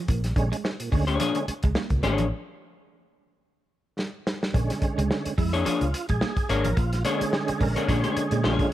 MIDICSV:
0, 0, Header, 1, 8, 480
1, 0, Start_track
1, 0, Tempo, 557103
1, 73, Time_signature, 4, 2, 24, 8
1, 7524, End_track
2, 0, Start_track
2, 0, Title_t, "Hollow-body jazz guitar"
2, 0, Program_c, 0, 26
2, 922, Note_on_c, 0, 73, 73
2, 928, Note_on_c, 0, 68, 71
2, 929, Note_on_c, 0, 62, 73
2, 933, Note_on_c, 0, 58, 61
2, 1020, Note_off_c, 0, 58, 0
2, 1022, Note_off_c, 0, 62, 0
2, 1026, Note_off_c, 0, 68, 0
2, 1029, Note_off_c, 0, 73, 0
2, 1030, Note_on_c, 0, 58, 83
2, 1033, Note_on_c, 0, 62, 86
2, 1037, Note_on_c, 0, 68, 92
2, 1039, Note_on_c, 0, 73, 95
2, 1191, Note_off_c, 0, 58, 0
2, 1192, Note_off_c, 0, 62, 0
2, 1194, Note_off_c, 0, 68, 0
2, 1195, Note_off_c, 0, 73, 0
2, 1748, Note_on_c, 0, 58, 100
2, 1753, Note_on_c, 0, 62, 104
2, 1754, Note_on_c, 0, 73, 102
2, 1756, Note_on_c, 0, 68, 95
2, 1932, Note_off_c, 0, 58, 0
2, 1934, Note_off_c, 0, 62, 0
2, 1935, Note_off_c, 0, 73, 0
2, 1936, Note_off_c, 0, 68, 0
2, 4766, Note_on_c, 0, 73, 76
2, 4767, Note_on_c, 0, 68, 77
2, 4773, Note_on_c, 0, 58, 70
2, 4773, Note_on_c, 0, 62, 74
2, 4857, Note_off_c, 0, 58, 0
2, 4861, Note_off_c, 0, 62, 0
2, 4865, Note_off_c, 0, 68, 0
2, 4865, Note_off_c, 0, 73, 0
2, 4867, Note_on_c, 0, 58, 80
2, 4871, Note_on_c, 0, 62, 91
2, 4875, Note_on_c, 0, 68, 91
2, 4875, Note_on_c, 0, 73, 83
2, 5029, Note_off_c, 0, 58, 0
2, 5032, Note_off_c, 0, 62, 0
2, 5033, Note_off_c, 0, 73, 0
2, 5034, Note_off_c, 0, 68, 0
2, 5594, Note_on_c, 0, 58, 89
2, 5596, Note_on_c, 0, 62, 90
2, 5601, Note_on_c, 0, 68, 95
2, 5603, Note_on_c, 0, 73, 100
2, 5753, Note_off_c, 0, 58, 0
2, 5754, Note_off_c, 0, 62, 0
2, 5756, Note_off_c, 0, 68, 0
2, 5757, Note_off_c, 0, 73, 0
2, 6071, Note_on_c, 0, 58, 93
2, 6075, Note_on_c, 0, 62, 94
2, 6077, Note_on_c, 0, 68, 84
2, 6079, Note_on_c, 0, 73, 99
2, 6232, Note_off_c, 0, 58, 0
2, 6233, Note_off_c, 0, 62, 0
2, 6235, Note_off_c, 0, 68, 0
2, 6236, Note_off_c, 0, 73, 0
2, 6687, Note_on_c, 0, 73, 79
2, 6692, Note_on_c, 0, 68, 84
2, 6694, Note_on_c, 0, 62, 69
2, 6696, Note_on_c, 0, 58, 72
2, 6781, Note_off_c, 0, 58, 0
2, 6786, Note_off_c, 0, 62, 0
2, 6789, Note_off_c, 0, 68, 0
2, 6792, Note_off_c, 0, 73, 0
2, 6792, Note_on_c, 0, 58, 67
2, 6796, Note_on_c, 0, 62, 81
2, 6799, Note_on_c, 0, 68, 81
2, 6802, Note_on_c, 0, 73, 82
2, 6913, Note_off_c, 0, 73, 0
2, 6917, Note_off_c, 0, 62, 0
2, 6918, Note_off_c, 0, 68, 0
2, 6922, Note_off_c, 0, 58, 0
2, 6923, Note_on_c, 0, 73, 69
2, 6927, Note_on_c, 0, 62, 66
2, 6928, Note_on_c, 0, 68, 68
2, 6931, Note_on_c, 0, 58, 58
2, 7091, Note_off_c, 0, 73, 0
2, 7092, Note_off_c, 0, 62, 0
2, 7093, Note_off_c, 0, 68, 0
2, 7094, Note_off_c, 0, 58, 0
2, 7268, Note_on_c, 0, 58, 85
2, 7272, Note_on_c, 0, 62, 79
2, 7274, Note_on_c, 0, 68, 99
2, 7277, Note_on_c, 0, 73, 86
2, 7451, Note_off_c, 0, 58, 0
2, 7453, Note_off_c, 0, 62, 0
2, 7455, Note_off_c, 0, 68, 0
2, 7456, Note_off_c, 0, 73, 0
2, 7524, End_track
3, 0, Start_track
3, 0, Title_t, "Tonewheel organ"
3, 0, Program_c, 1, 16
3, 71, Note_on_c, 1, 46, 53
3, 183, Note_off_c, 1, 46, 0
3, 310, Note_on_c, 1, 50, 93
3, 313, Note_on_c, 1, 56, 88
3, 315, Note_on_c, 1, 61, 106
3, 423, Note_off_c, 1, 50, 0
3, 424, Note_off_c, 1, 56, 0
3, 425, Note_off_c, 1, 61, 0
3, 445, Note_on_c, 1, 56, 42
3, 445, Note_on_c, 1, 61, 49
3, 489, Note_off_c, 1, 56, 0
3, 489, Note_off_c, 1, 61, 0
3, 551, Note_on_c, 1, 56, 44
3, 551, Note_on_c, 1, 61, 45
3, 606, Note_off_c, 1, 56, 0
3, 606, Note_off_c, 1, 61, 0
3, 687, Note_on_c, 1, 46, 56
3, 774, Note_off_c, 1, 46, 0
3, 789, Note_on_c, 1, 50, 79
3, 792, Note_on_c, 1, 56, 70
3, 794, Note_on_c, 1, 61, 94
3, 902, Note_off_c, 1, 50, 0
3, 904, Note_off_c, 1, 56, 0
3, 905, Note_off_c, 1, 61, 0
3, 1032, Note_on_c, 1, 46, 58
3, 1144, Note_off_c, 1, 46, 0
3, 1164, Note_on_c, 1, 50, 77
3, 1168, Note_on_c, 1, 56, 70
3, 1171, Note_on_c, 1, 61, 84
3, 1253, Note_off_c, 1, 50, 0
3, 1255, Note_off_c, 1, 56, 0
3, 1257, Note_off_c, 1, 61, 0
3, 1274, Note_on_c, 1, 56, 36
3, 1274, Note_on_c, 1, 61, 45
3, 1328, Note_off_c, 1, 56, 0
3, 1328, Note_off_c, 1, 61, 0
3, 1515, Note_on_c, 1, 56, 42
3, 1515, Note_on_c, 1, 61, 49
3, 1568, Note_off_c, 1, 56, 0
3, 1568, Note_off_c, 1, 61, 0
3, 1645, Note_on_c, 1, 46, 65
3, 1734, Note_off_c, 1, 46, 0
3, 1747, Note_on_c, 1, 50, 73
3, 1751, Note_on_c, 1, 56, 65
3, 1752, Note_on_c, 1, 61, 83
3, 1862, Note_off_c, 1, 50, 0
3, 1863, Note_off_c, 1, 56, 0
3, 1864, Note_off_c, 1, 61, 0
3, 3908, Note_on_c, 1, 50, 58
3, 3914, Note_on_c, 1, 56, 53
3, 3917, Note_on_c, 1, 61, 63
3, 4597, Note_off_c, 1, 50, 0
3, 4600, Note_off_c, 1, 56, 0
3, 4601, Note_off_c, 1, 61, 0
3, 4635, Note_on_c, 1, 64, 76
3, 4877, Note_on_c, 1, 65, 74
3, 4882, Note_off_c, 1, 64, 0
3, 5224, Note_off_c, 1, 65, 0
3, 5252, Note_on_c, 1, 68, 94
3, 5597, Note_on_c, 1, 70, 91
3, 5606, Note_off_c, 1, 68, 0
3, 5836, Note_on_c, 1, 65, 91
3, 5843, Note_off_c, 1, 70, 0
3, 6058, Note_off_c, 1, 65, 0
3, 6070, Note_on_c, 1, 50, 64
3, 6075, Note_on_c, 1, 56, 48
3, 6075, Note_on_c, 1, 68, 100
3, 6080, Note_on_c, 1, 61, 61
3, 6554, Note_on_c, 1, 70, 99
3, 6569, Note_off_c, 1, 68, 0
3, 6794, Note_on_c, 1, 73, 86
3, 6801, Note_off_c, 1, 70, 0
3, 7032, Note_on_c, 1, 68, 91
3, 7041, Note_off_c, 1, 73, 0
3, 7274, Note_on_c, 1, 65, 101
3, 7280, Note_off_c, 1, 68, 0
3, 7497, Note_off_c, 1, 65, 0
3, 7524, Note_off_c, 1, 50, 0
3, 7524, Note_off_c, 1, 56, 0
3, 7524, Note_off_c, 1, 61, 0
3, 7524, End_track
4, 0, Start_track
4, 0, Title_t, "Clean electric guitar"
4, 0, Program_c, 2, 27
4, 76, Note_on_c, 2, 58, 70
4, 177, Note_off_c, 2, 58, 0
4, 447, Note_on_c, 2, 56, 77
4, 527, Note_off_c, 2, 56, 0
4, 793, Note_on_c, 2, 56, 76
4, 896, Note_off_c, 2, 56, 0
4, 1035, Note_on_c, 2, 53, 81
4, 1137, Note_off_c, 2, 53, 0
4, 1411, Note_on_c, 2, 56, 78
4, 1490, Note_off_c, 2, 56, 0
4, 1517, Note_on_c, 2, 58, 82
4, 1618, Note_off_c, 2, 58, 0
4, 1887, Note_on_c, 2, 53, 89
4, 1968, Note_off_c, 2, 53, 0
4, 3913, Note_on_c, 2, 58, 69
4, 4016, Note_off_c, 2, 58, 0
4, 4291, Note_on_c, 2, 56, 68
4, 4371, Note_off_c, 2, 56, 0
4, 4633, Note_on_c, 2, 56, 82
4, 4736, Note_off_c, 2, 56, 0
4, 4873, Note_on_c, 2, 53, 85
4, 4975, Note_off_c, 2, 53, 0
4, 5247, Note_on_c, 2, 56, 75
4, 5328, Note_off_c, 2, 56, 0
4, 5353, Note_on_c, 2, 58, 84
4, 5456, Note_off_c, 2, 58, 0
4, 5726, Note_on_c, 2, 53, 86
4, 5807, Note_off_c, 2, 53, 0
4, 5831, Note_on_c, 2, 58, 80
4, 5935, Note_off_c, 2, 58, 0
4, 6204, Note_on_c, 2, 56, 74
4, 6286, Note_off_c, 2, 56, 0
4, 6553, Note_on_c, 2, 56, 79
4, 6655, Note_off_c, 2, 56, 0
4, 6793, Note_on_c, 2, 53, 81
4, 6896, Note_off_c, 2, 53, 0
4, 7170, Note_on_c, 2, 56, 80
4, 7250, Note_off_c, 2, 56, 0
4, 7276, Note_on_c, 2, 58, 85
4, 7377, Note_off_c, 2, 58, 0
4, 7524, End_track
5, 0, Start_track
5, 0, Title_t, "Fingered electric bass"
5, 0, Program_c, 3, 33
5, 76, Note_on_c, 3, 34, 97
5, 289, Note_off_c, 3, 34, 0
5, 312, Note_on_c, 3, 34, 101
5, 433, Note_off_c, 3, 34, 0
5, 797, Note_on_c, 3, 38, 96
5, 1010, Note_off_c, 3, 38, 0
5, 1410, Note_on_c, 3, 37, 93
5, 1504, Note_off_c, 3, 37, 0
5, 1644, Note_on_c, 3, 37, 86
5, 1740, Note_off_c, 3, 37, 0
5, 1752, Note_on_c, 3, 32, 100
5, 1873, Note_off_c, 3, 32, 0
5, 1885, Note_on_c, 3, 33, 93
5, 1981, Note_off_c, 3, 33, 0
5, 3915, Note_on_c, 3, 34, 105
5, 4035, Note_off_c, 3, 34, 0
5, 4292, Note_on_c, 3, 37, 99
5, 4385, Note_off_c, 3, 37, 0
5, 4635, Note_on_c, 3, 41, 94
5, 4849, Note_off_c, 3, 41, 0
5, 5008, Note_on_c, 3, 37, 75
5, 5103, Note_off_c, 3, 37, 0
5, 5256, Note_on_c, 3, 34, 87
5, 5347, Note_off_c, 3, 34, 0
5, 5597, Note_on_c, 3, 32, 93
5, 5716, Note_off_c, 3, 32, 0
5, 5736, Note_on_c, 3, 33, 90
5, 5827, Note_off_c, 3, 33, 0
5, 5835, Note_on_c, 3, 34, 112
5, 6049, Note_off_c, 3, 34, 0
5, 6557, Note_on_c, 3, 34, 94
5, 6675, Note_off_c, 3, 34, 0
5, 6795, Note_on_c, 3, 46, 100
5, 6915, Note_off_c, 3, 46, 0
5, 7166, Note_on_c, 3, 46, 93
5, 7261, Note_off_c, 3, 46, 0
5, 7278, Note_on_c, 3, 34, 104
5, 7396, Note_off_c, 3, 34, 0
5, 7524, End_track
6, 0, Start_track
6, 0, Title_t, "Muted clean electric guitar strokes"
6, 312, Note_on_c, 9, 29, 41
6, 399, Note_off_c, 9, 29, 0
6, 1171, Note_on_c, 9, 29, 45
6, 1257, Note_off_c, 9, 29, 0
6, 1754, Note_on_c, 9, 29, 40
6, 1841, Note_off_c, 9, 29, 0
6, 4155, Note_on_c, 9, 29, 42
6, 4241, Note_off_c, 9, 29, 0
6, 5008, Note_on_c, 9, 29, 40
6, 5094, Note_off_c, 9, 29, 0
6, 5596, Note_on_c, 9, 29, 42
6, 5682, Note_off_c, 9, 29, 0
6, 6075, Note_on_c, 9, 29, 45
6, 6161, Note_off_c, 9, 29, 0
6, 6931, Note_on_c, 9, 29, 45
6, 7017, Note_off_c, 9, 29, 0
6, 7524, End_track
7, 0, Start_track
7, 0, Title_t, "Muted fingered electric bass strokes"
7, 1274, Note_on_c, 9, 29, 51
7, 1360, Note_off_c, 9, 29, 0
7, 4533, Note_on_c, 9, 29, 47
7, 4619, Note_off_c, 9, 29, 0
7, 4878, Note_on_c, 9, 29, 43
7, 4964, Note_off_c, 9, 29, 0
7, 6213, Note_on_c, 9, 29, 47
7, 6299, Note_off_c, 9, 29, 0
7, 6453, Note_on_c, 9, 29, 42
7, 6539, Note_off_c, 9, 29, 0
7, 7035, Note_on_c, 9, 29, 51
7, 7122, Note_off_c, 9, 29, 0
7, 7524, End_track
8, 0, Start_track
8, 0, Title_t, "Drums"
8, 72, Note_on_c, 9, 42, 84
8, 74, Note_on_c, 9, 36, 119
8, 158, Note_off_c, 9, 42, 0
8, 160, Note_off_c, 9, 36, 0
8, 206, Note_on_c, 9, 42, 56
8, 211, Note_on_c, 9, 38, 42
8, 292, Note_off_c, 9, 42, 0
8, 297, Note_off_c, 9, 38, 0
8, 311, Note_on_c, 9, 36, 94
8, 312, Note_on_c, 9, 42, 71
8, 397, Note_off_c, 9, 36, 0
8, 398, Note_off_c, 9, 42, 0
8, 454, Note_on_c, 9, 42, 56
8, 540, Note_off_c, 9, 42, 0
8, 558, Note_on_c, 9, 38, 83
8, 644, Note_off_c, 9, 38, 0
8, 687, Note_on_c, 9, 42, 61
8, 774, Note_off_c, 9, 42, 0
8, 795, Note_on_c, 9, 36, 90
8, 797, Note_on_c, 9, 46, 60
8, 881, Note_off_c, 9, 36, 0
8, 883, Note_off_c, 9, 46, 0
8, 929, Note_on_c, 9, 42, 59
8, 1015, Note_off_c, 9, 42, 0
8, 1032, Note_on_c, 9, 42, 91
8, 1118, Note_off_c, 9, 42, 0
8, 1161, Note_on_c, 9, 42, 53
8, 1248, Note_off_c, 9, 42, 0
8, 1277, Note_on_c, 9, 42, 82
8, 1363, Note_off_c, 9, 42, 0
8, 1401, Note_on_c, 9, 42, 50
8, 1410, Note_on_c, 9, 36, 87
8, 1487, Note_off_c, 9, 42, 0
8, 1497, Note_off_c, 9, 36, 0
8, 1509, Note_on_c, 9, 38, 116
8, 1595, Note_off_c, 9, 38, 0
8, 1639, Note_on_c, 9, 42, 42
8, 1641, Note_on_c, 9, 36, 99
8, 1725, Note_off_c, 9, 42, 0
8, 1727, Note_off_c, 9, 36, 0
8, 1750, Note_on_c, 9, 42, 72
8, 1836, Note_off_c, 9, 42, 0
8, 1879, Note_on_c, 9, 42, 51
8, 1965, Note_off_c, 9, 42, 0
8, 3437, Note_on_c, 9, 38, 62
8, 3523, Note_off_c, 9, 38, 0
8, 3678, Note_on_c, 9, 38, 99
8, 3764, Note_off_c, 9, 38, 0
8, 3815, Note_on_c, 9, 38, 90
8, 3902, Note_off_c, 9, 38, 0
8, 3915, Note_on_c, 9, 36, 121
8, 3916, Note_on_c, 9, 42, 78
8, 4001, Note_off_c, 9, 36, 0
8, 4002, Note_off_c, 9, 42, 0
8, 4050, Note_on_c, 9, 42, 64
8, 4055, Note_on_c, 9, 38, 41
8, 4136, Note_off_c, 9, 42, 0
8, 4142, Note_off_c, 9, 38, 0
8, 4151, Note_on_c, 9, 42, 70
8, 4152, Note_on_c, 9, 36, 100
8, 4238, Note_off_c, 9, 36, 0
8, 4238, Note_off_c, 9, 42, 0
8, 4296, Note_on_c, 9, 42, 58
8, 4382, Note_off_c, 9, 42, 0
8, 4400, Note_on_c, 9, 38, 98
8, 4486, Note_off_c, 9, 38, 0
8, 4528, Note_on_c, 9, 42, 63
8, 4614, Note_off_c, 9, 42, 0
8, 4636, Note_on_c, 9, 36, 92
8, 4637, Note_on_c, 9, 46, 67
8, 4722, Note_off_c, 9, 36, 0
8, 4723, Note_off_c, 9, 46, 0
8, 4771, Note_on_c, 9, 42, 68
8, 4857, Note_off_c, 9, 42, 0
8, 4877, Note_on_c, 9, 42, 95
8, 4964, Note_off_c, 9, 42, 0
8, 5007, Note_on_c, 9, 42, 52
8, 5093, Note_off_c, 9, 42, 0
8, 5119, Note_on_c, 9, 42, 90
8, 5205, Note_off_c, 9, 42, 0
8, 5245, Note_on_c, 9, 42, 47
8, 5253, Note_on_c, 9, 36, 98
8, 5331, Note_off_c, 9, 42, 0
8, 5339, Note_off_c, 9, 36, 0
8, 5353, Note_on_c, 9, 38, 107
8, 5439, Note_off_c, 9, 38, 0
8, 5485, Note_on_c, 9, 36, 102
8, 5485, Note_on_c, 9, 42, 51
8, 5571, Note_off_c, 9, 36, 0
8, 5571, Note_off_c, 9, 42, 0
8, 5595, Note_on_c, 9, 42, 70
8, 5681, Note_off_c, 9, 42, 0
8, 5725, Note_on_c, 9, 42, 62
8, 5811, Note_off_c, 9, 42, 0
8, 5833, Note_on_c, 9, 42, 89
8, 5835, Note_on_c, 9, 36, 112
8, 5919, Note_off_c, 9, 42, 0
8, 5921, Note_off_c, 9, 36, 0
8, 5968, Note_on_c, 9, 42, 62
8, 5973, Note_on_c, 9, 38, 39
8, 6054, Note_off_c, 9, 42, 0
8, 6059, Note_off_c, 9, 38, 0
8, 6071, Note_on_c, 9, 42, 82
8, 6157, Note_off_c, 9, 42, 0
8, 6214, Note_on_c, 9, 42, 66
8, 6300, Note_off_c, 9, 42, 0
8, 6316, Note_on_c, 9, 38, 97
8, 6402, Note_off_c, 9, 38, 0
8, 6446, Note_on_c, 9, 42, 61
8, 6532, Note_off_c, 9, 42, 0
8, 6553, Note_on_c, 9, 46, 65
8, 6555, Note_on_c, 9, 36, 98
8, 6639, Note_off_c, 9, 46, 0
8, 6641, Note_off_c, 9, 36, 0
8, 6688, Note_on_c, 9, 42, 65
8, 6774, Note_off_c, 9, 42, 0
8, 6794, Note_on_c, 9, 36, 91
8, 6796, Note_on_c, 9, 42, 84
8, 6880, Note_off_c, 9, 36, 0
8, 6882, Note_off_c, 9, 42, 0
8, 6925, Note_on_c, 9, 42, 51
8, 7011, Note_off_c, 9, 42, 0
8, 7036, Note_on_c, 9, 42, 86
8, 7122, Note_off_c, 9, 42, 0
8, 7161, Note_on_c, 9, 42, 51
8, 7247, Note_off_c, 9, 42, 0
8, 7273, Note_on_c, 9, 38, 115
8, 7359, Note_off_c, 9, 38, 0
8, 7404, Note_on_c, 9, 36, 95
8, 7405, Note_on_c, 9, 42, 41
8, 7490, Note_off_c, 9, 36, 0
8, 7491, Note_off_c, 9, 42, 0
8, 7524, End_track
0, 0, End_of_file